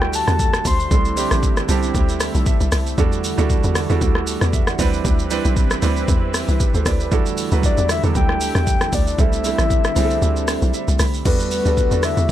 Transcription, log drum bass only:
0, 0, Header, 1, 2, 480
1, 0, Start_track
1, 0, Key_signature, 1, "minor"
1, 0, Tempo, 517241
1, 845, Time_signature, 4, 2, 24, 8
1, 11431, End_track
2, 0, Start_track
2, 0, Title_t, "Log drum bass"
2, 0, Program_c, 0, 39
2, 0, Note_on_c, 0, 38, 100
2, 213, Note_off_c, 0, 38, 0
2, 256, Note_on_c, 0, 40, 97
2, 563, Note_off_c, 0, 40, 0
2, 604, Note_on_c, 0, 38, 98
2, 816, Note_off_c, 0, 38, 0
2, 845, Note_on_c, 0, 36, 108
2, 1173, Note_off_c, 0, 36, 0
2, 1218, Note_on_c, 0, 33, 96
2, 1524, Note_off_c, 0, 33, 0
2, 1566, Note_on_c, 0, 36, 106
2, 1777, Note_off_c, 0, 36, 0
2, 1806, Note_on_c, 0, 38, 103
2, 2133, Note_off_c, 0, 38, 0
2, 2178, Note_on_c, 0, 35, 93
2, 2273, Note_off_c, 0, 35, 0
2, 2418, Note_on_c, 0, 36, 98
2, 2513, Note_off_c, 0, 36, 0
2, 2525, Note_on_c, 0, 36, 95
2, 2737, Note_off_c, 0, 36, 0
2, 2765, Note_on_c, 0, 40, 104
2, 3093, Note_off_c, 0, 40, 0
2, 3138, Note_on_c, 0, 38, 90
2, 3349, Note_off_c, 0, 38, 0
2, 3379, Note_on_c, 0, 40, 95
2, 3589, Note_off_c, 0, 40, 0
2, 3618, Note_on_c, 0, 40, 89
2, 3713, Note_off_c, 0, 40, 0
2, 3725, Note_on_c, 0, 38, 100
2, 4053, Note_off_c, 0, 38, 0
2, 4098, Note_on_c, 0, 40, 90
2, 4404, Note_off_c, 0, 40, 0
2, 4444, Note_on_c, 0, 38, 111
2, 4656, Note_off_c, 0, 38, 0
2, 4684, Note_on_c, 0, 38, 116
2, 5012, Note_off_c, 0, 38, 0
2, 5058, Note_on_c, 0, 35, 103
2, 5364, Note_off_c, 0, 35, 0
2, 5405, Note_on_c, 0, 38, 107
2, 5617, Note_off_c, 0, 38, 0
2, 5645, Note_on_c, 0, 40, 103
2, 5973, Note_off_c, 0, 40, 0
2, 6017, Note_on_c, 0, 36, 89
2, 6112, Note_off_c, 0, 36, 0
2, 6257, Note_on_c, 0, 38, 85
2, 6352, Note_off_c, 0, 38, 0
2, 6364, Note_on_c, 0, 38, 99
2, 6604, Note_on_c, 0, 40, 104
2, 6618, Note_off_c, 0, 38, 0
2, 6932, Note_off_c, 0, 40, 0
2, 6977, Note_on_c, 0, 38, 100
2, 7188, Note_off_c, 0, 38, 0
2, 7217, Note_on_c, 0, 40, 90
2, 7428, Note_off_c, 0, 40, 0
2, 7456, Note_on_c, 0, 40, 96
2, 7552, Note_off_c, 0, 40, 0
2, 7565, Note_on_c, 0, 38, 104
2, 7893, Note_off_c, 0, 38, 0
2, 7936, Note_on_c, 0, 40, 99
2, 8243, Note_off_c, 0, 40, 0
2, 8284, Note_on_c, 0, 38, 97
2, 8496, Note_off_c, 0, 38, 0
2, 8524, Note_on_c, 0, 36, 109
2, 8852, Note_off_c, 0, 36, 0
2, 8896, Note_on_c, 0, 33, 96
2, 9203, Note_off_c, 0, 33, 0
2, 9244, Note_on_c, 0, 36, 110
2, 9456, Note_off_c, 0, 36, 0
2, 9484, Note_on_c, 0, 38, 103
2, 9812, Note_off_c, 0, 38, 0
2, 9856, Note_on_c, 0, 35, 96
2, 9952, Note_off_c, 0, 35, 0
2, 10097, Note_on_c, 0, 36, 92
2, 10192, Note_off_c, 0, 36, 0
2, 10205, Note_on_c, 0, 36, 96
2, 10417, Note_off_c, 0, 36, 0
2, 10444, Note_on_c, 0, 40, 99
2, 10772, Note_off_c, 0, 40, 0
2, 10815, Note_on_c, 0, 38, 86
2, 11028, Note_off_c, 0, 38, 0
2, 11056, Note_on_c, 0, 40, 97
2, 11268, Note_off_c, 0, 40, 0
2, 11295, Note_on_c, 0, 40, 92
2, 11391, Note_off_c, 0, 40, 0
2, 11431, End_track
0, 0, End_of_file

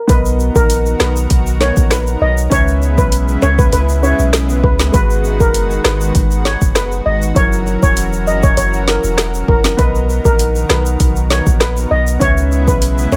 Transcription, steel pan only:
0, 0, Header, 1, 2, 480
1, 0, Start_track
1, 0, Key_signature, 5, "major"
1, 0, Tempo, 606061
1, 73, Time_signature, 4, 2, 24, 8
1, 10427, End_track
2, 0, Start_track
2, 0, Title_t, "Steel pan"
2, 0, Program_c, 0, 114
2, 76, Note_on_c, 0, 71, 97
2, 170, Note_off_c, 0, 71, 0
2, 441, Note_on_c, 0, 70, 89
2, 525, Note_off_c, 0, 70, 0
2, 793, Note_on_c, 0, 71, 76
2, 888, Note_off_c, 0, 71, 0
2, 1274, Note_on_c, 0, 73, 74
2, 1369, Note_off_c, 0, 73, 0
2, 1513, Note_on_c, 0, 71, 82
2, 1608, Note_off_c, 0, 71, 0
2, 1756, Note_on_c, 0, 75, 91
2, 1850, Note_off_c, 0, 75, 0
2, 1996, Note_on_c, 0, 73, 110
2, 2174, Note_off_c, 0, 73, 0
2, 2361, Note_on_c, 0, 71, 88
2, 2445, Note_off_c, 0, 71, 0
2, 2712, Note_on_c, 0, 73, 85
2, 2807, Note_off_c, 0, 73, 0
2, 2839, Note_on_c, 0, 71, 79
2, 2923, Note_off_c, 0, 71, 0
2, 2952, Note_on_c, 0, 71, 80
2, 3047, Note_off_c, 0, 71, 0
2, 3192, Note_on_c, 0, 73, 78
2, 3287, Note_off_c, 0, 73, 0
2, 3673, Note_on_c, 0, 71, 81
2, 3768, Note_off_c, 0, 71, 0
2, 3911, Note_on_c, 0, 71, 103
2, 4007, Note_off_c, 0, 71, 0
2, 4279, Note_on_c, 0, 70, 86
2, 4363, Note_off_c, 0, 70, 0
2, 4630, Note_on_c, 0, 71, 80
2, 4726, Note_off_c, 0, 71, 0
2, 5110, Note_on_c, 0, 73, 79
2, 5206, Note_off_c, 0, 73, 0
2, 5351, Note_on_c, 0, 71, 85
2, 5446, Note_off_c, 0, 71, 0
2, 5589, Note_on_c, 0, 75, 90
2, 5686, Note_off_c, 0, 75, 0
2, 5830, Note_on_c, 0, 73, 104
2, 6010, Note_off_c, 0, 73, 0
2, 6199, Note_on_c, 0, 73, 92
2, 6283, Note_off_c, 0, 73, 0
2, 6552, Note_on_c, 0, 75, 83
2, 6647, Note_off_c, 0, 75, 0
2, 6679, Note_on_c, 0, 73, 78
2, 6764, Note_off_c, 0, 73, 0
2, 6791, Note_on_c, 0, 73, 78
2, 6887, Note_off_c, 0, 73, 0
2, 7032, Note_on_c, 0, 70, 77
2, 7128, Note_off_c, 0, 70, 0
2, 7512, Note_on_c, 0, 70, 80
2, 7608, Note_off_c, 0, 70, 0
2, 7752, Note_on_c, 0, 71, 97
2, 7847, Note_off_c, 0, 71, 0
2, 8119, Note_on_c, 0, 70, 88
2, 8204, Note_off_c, 0, 70, 0
2, 8472, Note_on_c, 0, 71, 76
2, 8568, Note_off_c, 0, 71, 0
2, 8953, Note_on_c, 0, 73, 77
2, 9048, Note_off_c, 0, 73, 0
2, 9192, Note_on_c, 0, 71, 85
2, 9288, Note_off_c, 0, 71, 0
2, 9432, Note_on_c, 0, 75, 90
2, 9527, Note_off_c, 0, 75, 0
2, 9673, Note_on_c, 0, 73, 106
2, 9852, Note_off_c, 0, 73, 0
2, 10040, Note_on_c, 0, 71, 86
2, 10124, Note_off_c, 0, 71, 0
2, 10394, Note_on_c, 0, 73, 84
2, 10427, Note_off_c, 0, 73, 0
2, 10427, End_track
0, 0, End_of_file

